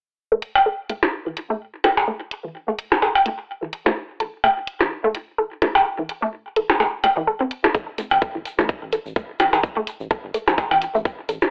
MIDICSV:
0, 0, Header, 1, 5, 480
1, 0, Start_track
1, 0, Tempo, 472441
1, 189, Time_signature, 4, 2, 24, 8
1, 11688, End_track
2, 0, Start_track
2, 0, Title_t, "Synth pluck"
2, 0, Program_c, 0, 84
2, 323, Note_on_c, 0, 57, 100
2, 354, Note_off_c, 0, 57, 0
2, 670, Note_on_c, 0, 69, 85
2, 693, Note_off_c, 0, 69, 0
2, 910, Note_on_c, 0, 57, 78
2, 933, Note_off_c, 0, 57, 0
2, 1284, Note_on_c, 0, 52, 77
2, 1329, Note_off_c, 0, 52, 0
2, 1524, Note_on_c, 0, 57, 100
2, 1554, Note_off_c, 0, 57, 0
2, 1871, Note_on_c, 0, 69, 75
2, 1893, Note_off_c, 0, 69, 0
2, 2110, Note_on_c, 0, 57, 82
2, 2133, Note_off_c, 0, 57, 0
2, 2484, Note_on_c, 0, 52, 75
2, 2529, Note_off_c, 0, 52, 0
2, 2724, Note_on_c, 0, 57, 94
2, 2754, Note_off_c, 0, 57, 0
2, 3070, Note_on_c, 0, 69, 79
2, 3093, Note_off_c, 0, 69, 0
2, 3310, Note_on_c, 0, 57, 75
2, 3333, Note_off_c, 0, 57, 0
2, 3683, Note_on_c, 0, 52, 75
2, 3729, Note_off_c, 0, 52, 0
2, 3923, Note_on_c, 0, 57, 99
2, 3953, Note_off_c, 0, 57, 0
2, 4269, Note_on_c, 0, 69, 76
2, 4292, Note_off_c, 0, 69, 0
2, 4509, Note_on_c, 0, 57, 83
2, 4532, Note_off_c, 0, 57, 0
2, 4883, Note_on_c, 0, 52, 74
2, 4929, Note_off_c, 0, 52, 0
2, 5123, Note_on_c, 0, 57, 101
2, 5154, Note_off_c, 0, 57, 0
2, 5469, Note_on_c, 0, 69, 82
2, 5492, Note_off_c, 0, 69, 0
2, 5709, Note_on_c, 0, 57, 75
2, 5732, Note_off_c, 0, 57, 0
2, 6083, Note_on_c, 0, 52, 73
2, 6129, Note_off_c, 0, 52, 0
2, 6323, Note_on_c, 0, 57, 101
2, 6354, Note_off_c, 0, 57, 0
2, 6670, Note_on_c, 0, 69, 77
2, 6693, Note_off_c, 0, 69, 0
2, 6909, Note_on_c, 0, 57, 83
2, 6932, Note_off_c, 0, 57, 0
2, 7149, Note_on_c, 0, 57, 78
2, 7188, Note_off_c, 0, 57, 0
2, 7283, Note_on_c, 0, 52, 100
2, 7314, Note_off_c, 0, 52, 0
2, 7389, Note_on_c, 0, 69, 97
2, 7427, Note_off_c, 0, 69, 0
2, 7522, Note_on_c, 0, 60, 99
2, 7543, Note_off_c, 0, 60, 0
2, 7763, Note_on_c, 0, 69, 99
2, 7783, Note_off_c, 0, 69, 0
2, 7869, Note_on_c, 0, 69, 84
2, 7892, Note_off_c, 0, 69, 0
2, 8109, Note_on_c, 0, 57, 74
2, 8132, Note_off_c, 0, 57, 0
2, 8483, Note_on_c, 0, 52, 73
2, 8529, Note_off_c, 0, 52, 0
2, 8723, Note_on_c, 0, 57, 100
2, 8753, Note_off_c, 0, 57, 0
2, 9069, Note_on_c, 0, 69, 75
2, 9092, Note_off_c, 0, 69, 0
2, 9310, Note_on_c, 0, 57, 80
2, 9333, Note_off_c, 0, 57, 0
2, 9683, Note_on_c, 0, 52, 78
2, 9729, Note_off_c, 0, 52, 0
2, 9923, Note_on_c, 0, 57, 104
2, 9953, Note_off_c, 0, 57, 0
2, 10269, Note_on_c, 0, 69, 84
2, 10292, Note_off_c, 0, 69, 0
2, 10509, Note_on_c, 0, 57, 78
2, 10532, Note_off_c, 0, 57, 0
2, 10883, Note_on_c, 0, 52, 78
2, 10929, Note_off_c, 0, 52, 0
2, 11124, Note_on_c, 0, 57, 100
2, 11154, Note_off_c, 0, 57, 0
2, 11470, Note_on_c, 0, 69, 77
2, 11493, Note_off_c, 0, 69, 0
2, 11688, End_track
3, 0, Start_track
3, 0, Title_t, "Analog synth bass"
3, 0, Program_c, 1, 38
3, 8243, Note_on_c, 1, 33, 96
3, 8320, Note_off_c, 1, 33, 0
3, 8483, Note_on_c, 1, 31, 96
3, 8560, Note_off_c, 1, 31, 0
3, 8723, Note_on_c, 1, 33, 100
3, 8800, Note_off_c, 1, 33, 0
3, 8964, Note_on_c, 1, 33, 90
3, 9128, Note_off_c, 1, 33, 0
3, 9203, Note_on_c, 1, 33, 89
3, 9280, Note_off_c, 1, 33, 0
3, 9549, Note_on_c, 1, 33, 86
3, 9646, Note_off_c, 1, 33, 0
3, 10163, Note_on_c, 1, 33, 100
3, 10240, Note_off_c, 1, 33, 0
3, 10403, Note_on_c, 1, 31, 100
3, 10480, Note_off_c, 1, 31, 0
3, 10643, Note_on_c, 1, 33, 101
3, 10720, Note_off_c, 1, 33, 0
3, 10883, Note_on_c, 1, 33, 88
3, 11048, Note_off_c, 1, 33, 0
3, 11123, Note_on_c, 1, 33, 88
3, 11199, Note_off_c, 1, 33, 0
3, 11469, Note_on_c, 1, 33, 91
3, 11566, Note_off_c, 1, 33, 0
3, 11688, End_track
4, 0, Start_track
4, 0, Title_t, "Percussion blips"
4, 564, Note_on_c, 9, 56, 62
4, 665, Note_off_c, 9, 56, 0
4, 1044, Note_on_c, 9, 64, 93
4, 1145, Note_off_c, 9, 64, 0
4, 1870, Note_on_c, 9, 56, 66
4, 1870, Note_on_c, 9, 64, 83
4, 1971, Note_off_c, 9, 56, 0
4, 1971, Note_off_c, 9, 64, 0
4, 2004, Note_on_c, 9, 77, 54
4, 2106, Note_off_c, 9, 77, 0
4, 2964, Note_on_c, 9, 64, 95
4, 2964, Note_on_c, 9, 77, 55
4, 3065, Note_off_c, 9, 64, 0
4, 3065, Note_off_c, 9, 77, 0
4, 3070, Note_on_c, 9, 77, 53
4, 3172, Note_off_c, 9, 77, 0
4, 3204, Note_on_c, 9, 56, 60
4, 3306, Note_off_c, 9, 56, 0
4, 3923, Note_on_c, 9, 64, 94
4, 4025, Note_off_c, 9, 64, 0
4, 4509, Note_on_c, 9, 56, 61
4, 4611, Note_off_c, 9, 56, 0
4, 4883, Note_on_c, 9, 64, 91
4, 4984, Note_off_c, 9, 64, 0
4, 5709, Note_on_c, 9, 64, 79
4, 5811, Note_off_c, 9, 64, 0
4, 5843, Note_on_c, 9, 56, 60
4, 5843, Note_on_c, 9, 77, 57
4, 5944, Note_off_c, 9, 56, 0
4, 5944, Note_off_c, 9, 77, 0
4, 6803, Note_on_c, 9, 64, 88
4, 6803, Note_on_c, 9, 77, 58
4, 6905, Note_off_c, 9, 64, 0
4, 6905, Note_off_c, 9, 77, 0
4, 6909, Note_on_c, 9, 77, 54
4, 7011, Note_off_c, 9, 77, 0
4, 7149, Note_on_c, 9, 56, 58
4, 7250, Note_off_c, 9, 56, 0
4, 7763, Note_on_c, 9, 64, 89
4, 7864, Note_off_c, 9, 64, 0
4, 8243, Note_on_c, 9, 56, 64
4, 8344, Note_off_c, 9, 56, 0
4, 8723, Note_on_c, 9, 64, 83
4, 8825, Note_off_c, 9, 64, 0
4, 9550, Note_on_c, 9, 56, 68
4, 9550, Note_on_c, 9, 64, 77
4, 9651, Note_off_c, 9, 56, 0
4, 9651, Note_off_c, 9, 64, 0
4, 9684, Note_on_c, 9, 77, 56
4, 9785, Note_off_c, 9, 77, 0
4, 10644, Note_on_c, 9, 64, 87
4, 10644, Note_on_c, 9, 77, 52
4, 10745, Note_off_c, 9, 64, 0
4, 10745, Note_off_c, 9, 77, 0
4, 10750, Note_on_c, 9, 77, 49
4, 10852, Note_off_c, 9, 77, 0
4, 10884, Note_on_c, 9, 56, 67
4, 10986, Note_off_c, 9, 56, 0
4, 11604, Note_on_c, 9, 64, 84
4, 11688, Note_off_c, 9, 64, 0
4, 11688, End_track
5, 0, Start_track
5, 0, Title_t, "Drums"
5, 429, Note_on_c, 9, 42, 90
5, 531, Note_off_c, 9, 42, 0
5, 910, Note_on_c, 9, 42, 88
5, 1011, Note_off_c, 9, 42, 0
5, 1389, Note_on_c, 9, 42, 89
5, 1491, Note_off_c, 9, 42, 0
5, 1869, Note_on_c, 9, 42, 88
5, 1971, Note_off_c, 9, 42, 0
5, 2350, Note_on_c, 9, 42, 93
5, 2451, Note_off_c, 9, 42, 0
5, 2829, Note_on_c, 9, 42, 89
5, 2931, Note_off_c, 9, 42, 0
5, 3309, Note_on_c, 9, 42, 90
5, 3411, Note_off_c, 9, 42, 0
5, 3789, Note_on_c, 9, 42, 91
5, 3891, Note_off_c, 9, 42, 0
5, 4269, Note_on_c, 9, 42, 92
5, 4371, Note_off_c, 9, 42, 0
5, 4749, Note_on_c, 9, 42, 93
5, 4850, Note_off_c, 9, 42, 0
5, 5229, Note_on_c, 9, 42, 95
5, 5330, Note_off_c, 9, 42, 0
5, 5709, Note_on_c, 9, 42, 93
5, 5811, Note_off_c, 9, 42, 0
5, 6189, Note_on_c, 9, 42, 92
5, 6291, Note_off_c, 9, 42, 0
5, 6669, Note_on_c, 9, 42, 94
5, 6771, Note_off_c, 9, 42, 0
5, 7149, Note_on_c, 9, 42, 91
5, 7250, Note_off_c, 9, 42, 0
5, 7629, Note_on_c, 9, 42, 92
5, 7731, Note_off_c, 9, 42, 0
5, 7763, Note_on_c, 9, 42, 36
5, 7865, Note_off_c, 9, 42, 0
5, 7865, Note_on_c, 9, 82, 36
5, 7869, Note_on_c, 9, 36, 112
5, 7966, Note_off_c, 9, 82, 0
5, 7971, Note_off_c, 9, 36, 0
5, 8109, Note_on_c, 9, 42, 90
5, 8115, Note_on_c, 9, 82, 90
5, 8211, Note_off_c, 9, 42, 0
5, 8217, Note_off_c, 9, 82, 0
5, 8236, Note_on_c, 9, 82, 49
5, 8338, Note_off_c, 9, 82, 0
5, 8349, Note_on_c, 9, 36, 101
5, 8350, Note_on_c, 9, 82, 34
5, 8451, Note_off_c, 9, 36, 0
5, 8451, Note_off_c, 9, 82, 0
5, 8589, Note_on_c, 9, 42, 87
5, 8596, Note_on_c, 9, 82, 82
5, 8691, Note_off_c, 9, 42, 0
5, 8697, Note_off_c, 9, 82, 0
5, 8723, Note_on_c, 9, 82, 47
5, 8824, Note_off_c, 9, 82, 0
5, 8826, Note_on_c, 9, 82, 35
5, 8830, Note_on_c, 9, 36, 109
5, 8927, Note_off_c, 9, 82, 0
5, 8931, Note_off_c, 9, 36, 0
5, 9067, Note_on_c, 9, 82, 91
5, 9069, Note_on_c, 9, 42, 86
5, 9169, Note_off_c, 9, 82, 0
5, 9171, Note_off_c, 9, 42, 0
5, 9205, Note_on_c, 9, 82, 48
5, 9306, Note_off_c, 9, 82, 0
5, 9310, Note_on_c, 9, 36, 104
5, 9312, Note_on_c, 9, 82, 35
5, 9411, Note_off_c, 9, 36, 0
5, 9413, Note_off_c, 9, 82, 0
5, 9549, Note_on_c, 9, 82, 86
5, 9550, Note_on_c, 9, 42, 90
5, 9650, Note_off_c, 9, 82, 0
5, 9651, Note_off_c, 9, 42, 0
5, 9680, Note_on_c, 9, 82, 53
5, 9781, Note_off_c, 9, 82, 0
5, 9790, Note_on_c, 9, 36, 107
5, 9795, Note_on_c, 9, 82, 36
5, 9891, Note_off_c, 9, 36, 0
5, 9897, Note_off_c, 9, 82, 0
5, 10030, Note_on_c, 9, 42, 89
5, 10033, Note_on_c, 9, 82, 84
5, 10131, Note_off_c, 9, 42, 0
5, 10135, Note_off_c, 9, 82, 0
5, 10164, Note_on_c, 9, 82, 48
5, 10265, Note_off_c, 9, 82, 0
5, 10268, Note_on_c, 9, 82, 33
5, 10270, Note_on_c, 9, 36, 97
5, 10369, Note_off_c, 9, 82, 0
5, 10371, Note_off_c, 9, 36, 0
5, 10509, Note_on_c, 9, 42, 88
5, 10513, Note_on_c, 9, 82, 85
5, 10611, Note_off_c, 9, 42, 0
5, 10615, Note_off_c, 9, 82, 0
5, 10642, Note_on_c, 9, 82, 50
5, 10743, Note_off_c, 9, 82, 0
5, 10749, Note_on_c, 9, 36, 107
5, 10754, Note_on_c, 9, 82, 34
5, 10851, Note_off_c, 9, 36, 0
5, 10856, Note_off_c, 9, 82, 0
5, 10989, Note_on_c, 9, 42, 88
5, 10996, Note_on_c, 9, 82, 86
5, 11091, Note_off_c, 9, 42, 0
5, 11098, Note_off_c, 9, 82, 0
5, 11126, Note_on_c, 9, 82, 44
5, 11227, Note_off_c, 9, 82, 0
5, 11230, Note_on_c, 9, 36, 101
5, 11234, Note_on_c, 9, 82, 36
5, 11331, Note_off_c, 9, 36, 0
5, 11336, Note_off_c, 9, 82, 0
5, 11469, Note_on_c, 9, 42, 89
5, 11472, Note_on_c, 9, 82, 78
5, 11571, Note_off_c, 9, 42, 0
5, 11574, Note_off_c, 9, 82, 0
5, 11602, Note_on_c, 9, 82, 48
5, 11688, Note_off_c, 9, 82, 0
5, 11688, End_track
0, 0, End_of_file